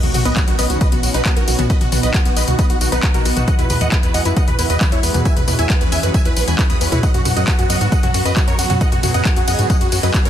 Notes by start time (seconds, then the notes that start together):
Already playing: impact
0.03 B1 F#4, closed hi-hat, mid tom, tambourine
0.14 B1 B2 D#3 B3 C#4 F#4, open hi-hat, mid tom, tambourine
0.25 B1 D#3 B3 C#4 F#4 B4 D#5, closed hi-hat, tambourine
0.36 F#4, kick, clap, closed hi-hat, tambourine
0.47 B1 B2 D#3 B3 C#4 F#4, closed hi-hat, tambourine
0.59 B1 B3 B4 D#5, open hi-hat, tambourine
0.70 C#2 D#3 B3 C#4 F#4, closed hi-hat, tambourine
0.81 B2 B4 D#5, kick, closed hi-hat, tambourine
0.92 B1 B3 F#4, closed hi-hat, mid tom, tambourine
1.03 B1 D#3 B3 C#4 F#4, open hi-hat, tambourine
1.14 B1 B2 D#4 B4, closed hi-hat, tambourine
1.25 D#3 B3 C#4 F#4, kick, clap, closed hi-hat, tambourine
1.37 B1 F#4 A#4, closed hi-hat, tambourine
1.48 B1 B2 D#3 B3 C#4 F#4, open hi-hat, tambourine
1.59 B1 B3 F#4, closed hi-hat, mid tom, tambourine
1.70 D#3 B3 D#4 F#4 B4 D#5, kick, closed hi-hat, tambourine
1.81 B1 B2 F#4, closed hi-hat, mid tom, tambourine
1.92 B1 D#3 B3 D#4 F#4, open hi-hat, mid tom, tambourine
2.03 B1 D#3 B3 D#4 F#4 B4 D#5, closed hi-hat, tambourine
2.14 B2 F#4, kick, clap, closed hi-hat, tambourine
2.25 B1 D#3 B3 D#4 F#4, closed hi-hat, tambourine
2.37 B1 B4 D#5, open hi-hat, tambourine
2.48 C#2 B2 D#3 B3 D#4 F#4, closed hi-hat, tambourine
2.59 B3 B4 D#5, kick, closed hi-hat, tambourine
2.70 B1 F#4, closed hi-hat, tambourine
2.81 B1 B2 D#3 B3 D#4 F#4, open hi-hat, tambourine
2.92 B1 B3 D#4 B4, closed hi-hat, tambourine
3.03 D#3 B3 D#4 F#4, kick, clap, closed hi-hat, tambourine
3.14 B1 B2 F#4 A#4, closed hi-hat, tambourine
3.25 B1 D#3 B3 D#4 F#4, open hi-hat, tambourine
3.37 B1 F#4, closed hi-hat, mid tom, tambourine
3.48 E3 G#3 B3 F#4 D#5 F#5, kick, closed hi-hat, tambourine
3.59 E2 E4 B4, closed hi-hat, mid tom, tambourine
3.70 E2 E3 G#3 B3 F#4 B4, open hi-hat, mid tom, tambourine
3.81 E2 E3 G#3 B3 F#4 D#5 F#5, closed hi-hat, tambourine
3.92 E4 B4, kick, clap, closed hi-hat, tambourine
4.03 E2 E3 G#3 B3 F#4 B4, closed hi-hat, tambourine
4.14 E2 E3 D#5 F#5, open hi-hat, tambourine
4.25 F#2 E3 G#3 B3 E4 F#4 B4, closed hi-hat, tambourine
4.37 D#5 F#5, kick, closed hi-hat, tambourine
4.48 E2 E3 B4, closed hi-hat, mid tom, tambourine
4.59 E2 E3 G#3 B3 E4 F#4 B4, open hi-hat, tambourine
4.70 E2 B4 D#5, closed hi-hat, tambourine
4.81 E3 G#3 B3 F#4 B4, kick, clap, closed hi-hat, tambourine
4.92 E2 E4 C#5, closed hi-hat, tambourine
5.03 E2 E3 G#3 B3 F#4 B4, open hi-hat, tambourine
5.14 E2 E3 B4, closed hi-hat, mid tom, tambourine
5.25 E3 G#3 C#4 E4 F#4 E5 G#5, kick, closed hi-hat, tambourine
5.36 E2 B4, closed hi-hat, mid tom, tambourine
5.48 E2 E3 G#3 C#4 F#4 B4, open hi-hat, mid tom, tambourine
5.59 E2 E3 G#3 C#4 E4 F#4 E5 G#5, closed hi-hat, tambourine
5.70 B4, kick, clap, closed hi-hat, tambourine
5.81 E2 E3 G#3 C#4 F#4 B4, closed hi-hat, tambourine
5.92 E2 E4 E5 G#5, open hi-hat, tambourine
6.03 F#2 E3 G#3 C#4 F#4 B4, closed hi-hat, tambourine
6.14 E3 E5 G#5, kick, closed hi-hat, tambourine
6.25 E2 E4 B4, closed hi-hat, tambourine
6.36 B1 E3 G#3 C#4 F#4 B4, open hi-hat, tambourine
6.47 E2 E3 G#5 B5, closed hi-hat, tambourine
6.59 E3 G#3 C#4 E4 F#4 B4, kick, clap, closed hi-hat, tambourine
6.70 E2 B5 D#6, closed hi-hat, tambourine
6.81 E2 E3 G#3 C#4 F#4 B4, open hi-hat, tambourine
6.92 E2 E4 B4, closed hi-hat, mid tom, tambourine
7.03 C#3 F#3 B3 F#4 D#5 F#5, kick, closed hi-hat, tambourine
7.14 F#2 F#4, closed hi-hat, mid tom, tambourine
7.25 F#2 C#3 F#3 B3 F#4, open hi-hat, mid tom, ride, tambourine
7.36 F#2 C#3 F#3 B3 F#4 D#5 F#5, closed hi-hat, tambourine
7.47 F#4, kick, clap, closed hi-hat, tambourine
7.59 F#2 C#3 F#3 B3 F#4, closed hi-hat, tambourine
7.70 F#2 F#3 D#5 F#5, open hi-hat, ride, tambourine
7.81 G#2 C#3 F#3 B3 F#4, closed hi-hat, tambourine
7.92 F#2 D#5 F#5, kick, closed hi-hat, tambourine
8.03 F#2 F#3 F#4, closed hi-hat, mid tom, tambourine
8.14 F#2 C#3 F#3 B3 F#4, open hi-hat, ride, tambourine
8.25 F#2 B4 D#5, closed hi-hat, tambourine
8.36 C#3 F#3 B3 F#4, kick, clap, closed hi-hat, tambourine
8.48 F#2 A#4 C#5, closed hi-hat, tambourine
8.59 F#2 C#3 F#3 B3 F#4, open hi-hat, ride, tambourine
8.70 F#2 F#3 F#4, closed hi-hat, mid tom, tambourine
8.81 C#3 F#3 B3 G#4 D#5 F#5, kick, closed hi-hat, tambourine
8.92 F#2 F#4, closed hi-hat, mid tom, tambourine
9.03 F#2 C#3 F#3 B3 F#4 G#4, open hi-hat, mid tom, ride, tambourine
9.14 F#2 C#3 F#3 B3 G#4 D#5 F#5, closed hi-hat, tambourine
9.25 F#2 F#4, kick, clap, closed hi-hat, tambourine
9.36 F#2 C#3 F#3 B3 F#4 G#4, closed hi-hat, tambourine
9.48 F#2 D#5 F#5, open hi-hat, ride, tambourine
9.59 F#2 G#2 C#3 F#3 B3 F#4 G#4, closed hi-hat, tambourine
9.70 F#3 D#5 F#5, kick, closed hi-hat, tambourine
9.81 F#2 F#4, closed hi-hat, tambourine
9.92 F#2 C#3 F#3 B3 F#4 G#4, open hi-hat, ride, tambourine
10.03 F#2 F#3 B4 D#5, closed hi-hat, tambourine
10.14 C#3 F#3 B3 F#4 G#4, kick, clap, closed hi-hat, tambourine
10.25 F#2 A#4 C#5, closed hi-hat, tambourine